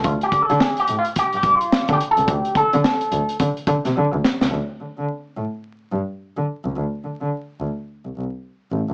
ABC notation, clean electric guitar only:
X:1
M:4/4
L:1/8
Q:"Swing 16ths" 1/4=107
K:C
V:1 name="Clean electric guitar"
(3F G A (3^G =G F (3G G F- (3F G A | G A3 z4 | z8 | z8 |]